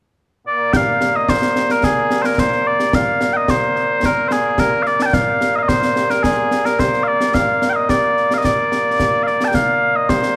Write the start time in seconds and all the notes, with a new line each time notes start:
0.47 A#2 A#3 D5
0.73 F5 G5, concert bass drum, snare
1.01 snare
1.16 D#5
1.29 C5, concert bass drum, snare
1.42 snare
1.56 snare
1.70 A#4, snare
1.83 G#4, concert bass drum, snare
2.11 snare
2.22 A#4 C5, snare
2.38 C5, concert bass drum, snare
2.52 snare
2.67 D5
2.80 snare
2.93 F5, concert bass drum, snare
3.21 snare
3.33 D#5 G5
3.48 C5, concert bass drum, snare
3.76 snare
4.03 A#4, concert bass drum, snare
4.28 C5, snare
4.32 G#4
4.58 A#4, concert bass drum, snare
4.83 F5, snare
4.87 D5
5.00 A5, snare
5.06 G5
5.13 F5, concert bass drum, snare
5.41 snare
5.56 D#5 F5
5.63 D#5
5.68 C5, concert bass drum, snare
5.83 snare
5.96 snare
6.10 A#4, snare
6.23 G#4, concert bass drum, snare
6.51 snare
6.66 A#4, snare
6.79 C5, concert bass drum, snare
6.93 snare
7.04 F5
7.08 D5
7.21 snare
7.34 F5, concert bass drum, snare
7.62 snare
7.69 F5 G5
7.76 D#5
7.89 D5, concert bass drum, snare
8.17 snare
8.31 F5, snare
8.38 D#5
8.44 D5, concert bass drum, snare
8.72 snare
9.00 concert bass drum, snare
9.23 F5, snare
9.27 D5
9.41 A5, snare
9.48 G5
9.54 F5, concert bass drum, snare
9.96 D#5
10.09 C5, concert bass drum, snare
10.23 snare